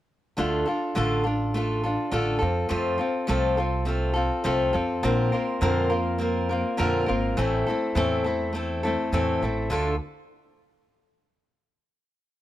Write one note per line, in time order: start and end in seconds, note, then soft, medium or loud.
0.37 0.62 D2 medium
0.37 0.66 D3 medium
0.37 0.66 A3 medium
0.37 0.67 D4 medium
0.37 0.66 F4 medium
0.37 0.64 A4 medium
0.66 0.95 D4 soft
0.66 0.95 F4 soft
0.66 0.95 A4 medium
0.95 1.95 A1 medium
0.95 1.24 D3 medium
0.95 1.24 A3 medium
0.95 1.25 D4 medium
0.95 1.23 F4 medium
0.95 1.22 A4 medium
1.24 1.54 D4 soft
1.24 1.54 F4 soft
1.24 1.53 A4 medium
1.54 1.83 A3 medium
1.54 1.83 D4 medium
1.54 1.83 F4 medium
1.54 1.82 A4 medium
1.83 2.11 D4 soft
1.83 2.12 F4 soft
1.83 2.12 A4 medium
2.11 2.37 A1 medium
2.11 2.41 D3 medium
2.11 2.41 A3 medium
2.11 2.41 D4 medium
2.11 2.40 F4 medium
2.11 2.38 A4 medium
2.39 2.66 F2 medium
2.39 2.69 C4 soft
2.39 2.69 F4 soft
2.39 2.69 A4 medium
2.69 2.95 F2 loud
2.69 2.99 F3 medium
2.69 2.99 A3 medium
2.69 3.00 C4 medium
2.69 2.98 F4 medium
2.69 2.97 A4 medium
2.98 3.27 C4 soft
2.98 3.28 F4 medium
2.98 3.28 A4 soft
3.27 4.28 C2 medium
3.27 3.57 F3 medium
3.27 3.57 A3 medium
3.27 3.58 C4 medium
3.27 3.57 F4 medium
3.27 3.56 A4 medium
3.57 3.85 C4 soft
3.57 3.86 F4 medium
3.57 3.87 A4 medium
3.85 4.15 A3 medium
3.85 4.16 C4 medium
3.85 4.14 F4 medium
3.85 4.12 A4 medium
4.14 4.43 C4 soft
4.14 4.44 F4 medium
4.14 4.44 A4 medium
4.44 4.70 C2 medium
4.44 4.74 F3 medium
4.44 4.74 A3 medium
4.44 4.74 C4 medium
4.44 4.73 F4 medium
4.44 4.72 A4 medium
4.73 4.99 F2 medium
4.73 5.03 C4 soft
4.73 5.04 F4 medium
4.73 5.03 A4 medium
5.03 5.28 A#1 loud
5.03 5.33 A#2 medium
5.03 5.33 D3 medium
5.03 5.33 A#3 medium
5.03 5.33 C4 medium
5.03 5.32 F4 medium
5.03 5.31 A#4 medium
5.32 5.62 A#3 soft
5.32 5.61 C4 soft
5.32 5.61 F4 medium
5.32 5.61 A#4 medium
5.61 6.62 F2 medium
5.61 5.91 A#2 medium
5.61 5.91 D3 medium
5.61 5.91 A#3 loud
5.61 5.90 C4 medium
5.61 5.89 F4 medium
5.61 5.88 A#4 medium
5.89 6.17 A#3 soft
5.89 6.18 C4 soft
5.89 6.20 F4 medium
5.89 6.20 A#4 soft
6.18 6.49 A#3 medium
6.18 6.49 C4 medium
6.18 6.50 F4 medium
6.18 6.48 A#4 medium
6.49 6.77 A#3 soft
6.49 6.78 C4 soft
6.49 6.78 F4 soft
6.49 6.78 A#4 medium
6.77 7.04 F2 medium
6.77 7.07 A#2 medium
6.77 7.08 D3 medium
6.77 7.08 A#3 medium
6.77 7.07 C4 medium
6.77 7.07 F4 medium
6.77 7.05 A#4 medium
7.06 7.34 G#1 medium
7.06 7.37 A#3 soft
7.06 7.37 C4 soft
7.06 7.37 F4 medium
7.06 7.36 A#4 medium
7.37 7.62 A1 loud
7.37 7.66 A2 medium
7.37 7.67 E3 medium
7.37 7.67 A3 medium
7.37 7.67 C4 medium
7.37 7.67 E4 medium
7.37 7.65 A4 medium
7.66 7.95 A3 soft
7.66 7.96 C4 medium
7.66 7.96 E4 medium
7.66 7.96 A4 medium
7.95 8.95 E2 loud
7.95 8.25 A2 medium
7.95 8.25 E3 medium
7.95 8.25 A3 medium
7.95 8.25 C4 medium
7.95 8.25 E4 medium
7.95 8.23 A4 medium
8.24 8.51 A3 soft
8.24 8.53 C4 soft
8.24 8.54 E4 medium
8.24 8.54 A4 medium
8.53 8.83 A3 medium
8.53 8.83 C4 medium
8.53 8.83 E4 medium
8.53 8.82 A4 medium
8.83 9.12 A3 medium
8.83 9.13 C4 medium
8.83 9.13 E4 medium
8.83 9.12 A4 medium
9.12 9.37 E2 medium
9.12 9.42 A2 medium
9.12 9.42 E3 medium
9.12 9.42 A3 medium
9.12 9.42 C4 medium
9.12 9.42 E4 medium
9.12 9.41 A4 medium
9.42 9.67 A1 medium
9.42 9.69 A3 soft
9.42 9.70 C4 soft
9.42 9.71 E4 soft
9.42 9.71 A4 medium
9.70 9.98 D2 medium
9.70 9.94 D3 medium
9.70 9.94 A3 medium
9.70 9.94 D4 medium
9.70 9.94 F4 medium
9.70 9.95 A4 medium